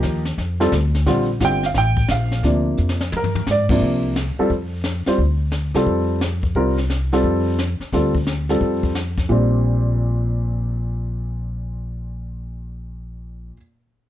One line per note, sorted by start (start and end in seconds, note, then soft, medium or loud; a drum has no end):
0.00 0.37 D#2 medium
0.00 0.21 F3 medium
0.00 0.22 A#3 medium
0.00 0.22 D#4 medium
0.00 0.22 G4 medium
0.00 kick soft
0.00 snare medium
0.00 hi-hat pedal medium
0.25 snare soft
0.38 0.71 F2 medium
0.38 brush sweep soft
0.38 kick soft
0.38 snare soft
0.60 0.71 G3 medium
0.60 0.71 C4 medium
0.60 0.71 F4 medium
0.60 0.71 A4 medium
0.60 snare soft
0.72 1.05 D2 medium
0.72 kick soft
0.72 snare medium
0.72 hi-hat pedal medium
0.95 snare soft
1.06 1.39 A#1 medium
1.06 1.26 D3 medium
1.06 1.27 G3 medium
1.06 1.27 C4 medium
1.06 1.27 F4 medium
1.06 brush sweep soft
1.06 kick soft
1.06 snare soft
1.40 1.74 G1 medium
1.40 1.61 D3 soft
1.40 1.61 G3 soft
1.40 1.61 C4 soft
1.40 1.61 F4 medium
1.40 kick soft
1.40 snare medium
1.40 hi-hat pedal soft
1.45 1.64 G5 medium
1.63 1.76 F5 medium
1.63 snare soft
1.74 2.08 A1 medium
1.74 2.08 G5 medium
1.74 brush sweep soft
1.74 kick soft
1.74 snare soft
1.97 kick medium
2.08 2.42 A#1 medium
2.08 2.42 F5 medium
2.08 kick soft
2.08 snare medium
2.08 hi-hat pedal medium
2.32 snare soft
2.43 2.76 D2 medium
2.43 2.96 C3 soft
2.43 2.96 F3 soft
2.43 2.96 A#3 soft
2.43 2.96 D4 medium
2.43 brush sweep soft
2.43 kick soft
2.43 snare soft
2.77 3.11 F2 medium
2.77 hi-hat pedal medium
2.89 snare medium
3.01 snare medium
3.12 3.46 G2 medium
3.12 high tom medium
3.17 3.46 A#4 medium
3.24 floor tom medium
3.35 floor tom medium
3.47 3.80 G#2 medium
3.47 snare medium
3.47 hi-hat pedal medium
3.51 3.63 D5 medium
3.69 4.13 C3 medium
3.69 4.13 F3 medium
3.69 4.14 A#3 medium
3.69 4.13 D4 medium
3.69 kick medium
3.69 crash medium
3.81 4.34 C2 medium
3.81 brush sweep soft
3.81 kick soft
4.16 snare medium
4.16 hi-hat pedal soft
4.39 4.49 G3 medium
4.39 4.49 C4 medium
4.39 4.49 F4 medium
4.39 4.49 A4 medium
4.39 muted upright bass stroke soft
4.50 5.02 F2 medium
4.50 brush sweep medium
4.50 kick soft
4.84 snare medium
4.84 hi-hat pedal medium
5.06 5.17 G3 medium
5.06 5.17 C4 medium
5.06 5.18 F4 medium
5.06 5.18 C5 medium
5.06 muted upright bass stroke soft
5.06 snare soft
5.18 5.71 D2 medium
5.18 brush sweep soft
5.18 kick soft
5.52 snare medium
5.52 hi-hat pedal soft
5.74 5.86 C3 medium
5.74 6.19 G3 medium
5.74 6.19 C4 medium
5.74 6.19 F4 medium
5.74 6.19 A4 medium
5.74 snare soft
5.86 6.52 F2 medium
5.86 brush sweep soft
5.86 kick soft
6.21 snare medium
6.21 hi-hat pedal medium
6.43 kick soft
6.55 7.20 C2 medium
6.55 6.75 G3 medium
6.55 6.75 C4 medium
6.55 6.76 F4 medium
6.55 6.75 A#4 medium
6.55 brush sweep soft
6.55 kick soft
6.78 snare soft
6.90 snare medium
6.90 hi-hat pedal soft
7.12 7.56 G3 medium
7.12 7.56 C4 medium
7.12 7.56 F4 medium
7.12 7.56 A4 medium
7.12 snare soft
7.24 7.76 F2 medium
7.24 brush sweep soft
7.24 kick soft
7.58 snare medium
7.58 hi-hat pedal medium
7.80 muted upright bass stroke soft
7.80 snare soft
7.93 8.58 D2 medium
7.93 8.13 G3 medium
7.93 8.13 C4 medium
7.93 8.13 F4 medium
7.93 8.13 A4 medium
7.93 brush sweep soft
7.93 kick soft
7.93 snare soft
8.15 kick soft
8.27 snare medium
8.27 hi-hat pedal soft
8.49 8.93 G3 medium
8.49 8.93 C4 medium
8.49 8.93 F4 medium
8.49 8.93 A4 medium
8.49 snare soft
8.61 9.26 F2 medium
8.61 brush sweep soft
8.61 kick soft
8.83 kick soft
8.95 snare medium
8.95 hi-hat pedal medium
9.18 kick soft
9.18 snare soft
9.29 13.50 A#1 medium
9.29 13.54 A#2 medium
9.29 13.54 G3 medium
9.29 13.55 C4 medium
9.29 13.55 D4 medium